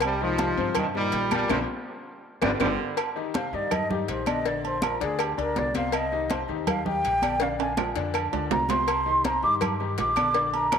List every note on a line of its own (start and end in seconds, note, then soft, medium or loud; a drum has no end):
0.00 0.51 C2 loud
0.00 0.13 C3 medium
0.00 0.20 C3 medium
0.00 0.14 C4 medium
0.00 0.14 C5 medium
0.00 cowbell loud
0.00 high conga soft
0.00 low agogo loud
0.00 claves medium
0.05 0.20 G3 loud
0.21 0.73 G#2 medium
0.21 0.36 D#3 medium
0.21 0.73 F3 loud
0.21 0.36 D#4 medium
0.21 0.36 G4 medium
0.21 high conga soft
0.38 0.54 D#3 medium
0.38 0.54 D#4 medium
0.38 0.54 G4 medium
0.38 cowbell medium
0.38 high conga loud
0.38 low agogo medium
0.57 1.09 G2 loud
0.57 0.88 C3 medium
0.57 0.88 C4 loud
0.57 0.88 C5 medium
0.57 high conga soft
0.75 0.86 G2 medium
0.75 cowbell loud
0.75 high conga soft
0.75 low conga medium
0.75 low agogo loud
0.75 claves medium
0.79 0.86 D#3 loud
0.95 1.30 A#2 medium
0.95 1.25 D#3 medium
0.95 1.30 G3 loud
0.95 1.25 D#4 medium
0.95 1.25 G4 medium
0.95 high conga soft
1.12 1.47 A#1 loud
1.12 cowbell medium
1.12 high conga soft
1.12 low agogo medium
1.31 1.47 A#2 loud
1.31 1.50 A#2 medium
1.31 1.50 G3 loud
1.31 1.47 A#3 medium
1.31 1.47 A#4 medium
1.31 cowbell medium
1.31 high conga medium
1.31 low agogo loud
1.31 claves medium
1.49 1.63 A#1 medium
1.49 1.60 A#2 loud
1.49 1.60 D3 loud
1.49 1.62 F3 loud
1.49 1.60 F3 loud
1.49 1.62 A#3 loud
1.49 1.62 D4 loud
1.49 cowbell loud
1.49 high conga loud
1.49 high timbale loud
1.49 claves medium
2.42 2.56 G1 medium
2.42 2.51 C3 medium
2.42 2.51 D3 loud
2.42 2.52 F3 loud
2.42 2.54 G3 medium
2.42 2.52 G3 medium
2.42 2.54 B3 loud
2.42 2.54 D4 loud
2.42 cowbell loud
2.42 high conga loud
2.42 high timbale loud
2.42 claves loud
2.52 2.59 D3 medium
2.60 2.74 G1 loud
2.60 2.69 D3 loud
2.60 2.95 D3 loud
2.60 2.69 F3 loud
2.60 2.72 G3 medium
2.60 2.70 G3 loud
2.60 2.72 B3 medium
2.60 2.72 D4 loud
2.60 cowbell medium
2.60 high conga loud
2.60 high timbale loud
2.60 claves loud
2.97 cowbell loud
2.97 high conga soft
2.97 low agogo loud
2.97 claves medium
3.16 3.31 D#3 medium
3.16 3.31 D#4 medium
3.16 3.31 G4 medium
3.16 high conga soft
3.34 3.50 C3 medium
3.34 3.50 C4 medium
3.34 3.50 C5 medium
3.34 3.56 F5 medium
3.34 cowbell medium
3.34 high conga loud
3.34 low agogo medium
3.53 4.05 G2 loud
3.53 3.84 D#3 medium
3.53 3.84 D#4 medium
3.53 3.84 G4 medium
3.53 3.74 D5 loud
3.53 high conga soft
3.71 3.91 D#5 medium
3.71 cowbell loud
3.71 high conga soft
3.71 low conga medium
3.71 low agogo loud
3.71 claves medium
3.90 4.20 D#3 medium
3.90 4.21 D#4 medium
3.90 4.21 G4 medium
3.90 4.10 G4 medium
3.90 high conga soft
3.90 low conga medium
4.08 4.95 A#1 loud
4.08 4.30 C5 medium
4.08 cowbell medium
4.08 high conga soft
4.08 low agogo medium
4.26 4.42 D3 medium
4.26 4.42 D4 medium
4.26 4.42 D5 medium
4.26 4.48 D#5 medium
4.26 cowbell medium
4.26 high conga loud
4.26 low agogo loud
4.26 claves medium
4.45 4.76 D3 medium
4.45 4.76 D4 medium
4.45 4.76 D5 medium
4.45 4.65 D5 medium
4.45 cowbell loud
4.45 high conga soft
4.64 4.85 C5 loud
4.64 high conga soft
4.64 low agogo medium
4.82 4.98 F3 medium
4.82 4.98 F4 medium
4.82 4.98 A#4 medium
4.82 5.02 A#4 medium
4.82 cowbell medium
4.82 high conga loud
4.82 low agogo loud
4.82 claves medium
5.00 5.36 D2 loud
5.00 5.31 D3 medium
5.00 5.31 D4 medium
5.00 5.23 G#4 medium
5.00 5.31 D5 medium
5.00 cowbell medium
5.19 5.39 G4 medium
5.19 cowbell loud
5.19 high conga soft
5.19 low agogo loud
5.19 claves medium
5.37 5.55 D2 medium
5.37 5.68 D3 medium
5.37 5.68 D4 medium
5.37 5.60 A#4 loud
5.37 5.68 D5 medium
5.37 high conga soft
5.37 low agogo medium
5.56 6.43 C2 medium
5.56 5.76 D5 loud
5.56 cowbell medium
5.56 high conga medium
5.56 low timbale medium
5.74 6.05 C3 medium
5.74 6.05 C4 medium
5.74 6.06 C5 medium
5.74 5.96 F5 loud
5.74 cowbell medium
5.74 high conga loud
5.74 low agogo medium
5.92 6.31 D#5 medium
5.92 cowbell loud
5.92 high conga soft
5.92 low agogo loud
5.92 claves medium
6.12 6.27 D#3 medium
6.12 6.27 D#4 medium
6.12 6.27 G4 medium
6.12 high conga soft
6.30 6.45 C3 medium
6.30 6.45 C4 medium
6.30 6.46 C5 medium
6.30 cowbell medium
6.30 high conga loud
6.30 low agogo medium
6.48 7.00 D#2 medium
6.48 6.79 D#3 medium
6.48 6.79 D#4 medium
6.48 6.79 G4 medium
6.48 high conga soft
6.67 6.85 F5 medium
6.67 cowbell loud
6.67 high conga soft
6.67 low conga medium
6.67 low agogo loud
6.67 claves medium
6.85 7.16 D#3 medium
6.85 7.16 D#4 medium
6.85 7.16 G4 medium
6.85 7.44 G5 loud
6.85 high conga soft
6.85 low conga medium
7.04 7.91 A#1 medium
7.04 cowbell medium
7.04 high conga soft
7.04 low agogo medium
7.22 7.38 D3 medium
7.22 7.38 D4 medium
7.22 7.38 D5 medium
7.22 cowbell medium
7.22 high conga medium
7.22 low agogo loud
7.22 claves medium
7.40 7.71 D3 medium
7.40 7.71 D4 medium
7.40 7.72 D5 medium
7.40 7.59 F5 loud
7.40 cowbell loud
7.40 high conga soft
7.40 high timbale medium
7.59 7.77 G#5 medium
7.59 high conga soft
7.59 high timbale loud
7.59 low agogo medium
7.77 7.93 F3 medium
7.77 7.93 F4 medium
7.77 7.93 A#4 medium
7.77 cowbell medium
7.77 high conga loud
7.77 low timbale medium
7.77 low agogo loud
7.77 claves medium
7.96 8.30 F2 loud
7.96 8.26 D3 loud
7.96 8.26 D4 medium
7.96 8.26 D5 medium
7.96 cowbell medium
8.14 cowbell loud
8.14 high conga soft
8.14 low agogo loud
8.14 claves medium
8.32 8.50 D2 medium
8.32 8.63 D3 medium
8.32 8.63 D4 medium
8.32 8.63 D5 medium
8.32 high conga soft
8.32 low timbale medium
8.32 low agogo medium
8.51 9.38 C2 medium
8.51 8.72 A#5 loud
8.51 cowbell medium
8.51 high conga medium
8.51 low timbale loud
8.69 9.00 C3 medium
8.69 9.00 C4 medium
8.69 9.00 C5 medium
8.69 9.26 C6 loud
8.69 cowbell medium
8.69 high conga medium
8.69 low timbale medium
8.69 low agogo medium
8.87 cowbell loud
8.87 high conga soft
8.87 low agogo loud
8.87 claves medium
9.06 9.21 D#3 medium
9.06 9.21 D#4 medium
9.06 9.22 G4 medium
9.06 high conga soft
9.24 9.40 C3 medium
9.24 9.40 C4 medium
9.24 9.40 C5 medium
9.24 9.43 A#5 medium
9.24 cowbell medium
9.24 high conga loud
9.24 low agogo medium
9.42 9.94 G2 loud
9.42 9.73 D#3 medium
9.42 9.74 D#4 medium
9.42 9.74 G4 medium
9.42 9.55 D6 loud
9.42 high conga soft
9.61 cowbell loud
9.61 high conga soft
9.61 low conga medium
9.61 low agogo loud
9.61 claves medium
9.80 10.10 D#3 medium
9.80 10.10 D#4 medium
9.80 10.11 G4 medium
9.80 high conga soft
9.98 10.79 A#1 loud
9.98 10.51 D6 medium
9.98 cowbell medium
9.98 high conga soft
9.98 low timbale medium
9.98 low agogo medium
10.16 10.32 D3 medium
10.16 10.32 D4 medium
10.16 10.32 D5 medium
10.16 cowbell medium
10.16 high conga medium
10.16 low agogo loud
10.16 claves medium
10.34 10.65 D3 medium
10.34 10.65 D4 medium
10.34 10.65 D5 medium
10.34 cowbell loud
10.34 high conga soft
10.54 10.79 A#5 medium
10.54 high conga soft
10.54 low agogo medium
10.71 10.79 F3 medium
10.71 10.79 F4 medium
10.71 10.79 A#4 medium
10.71 cowbell medium
10.71 high conga loud
10.71 low agogo loud
10.71 claves medium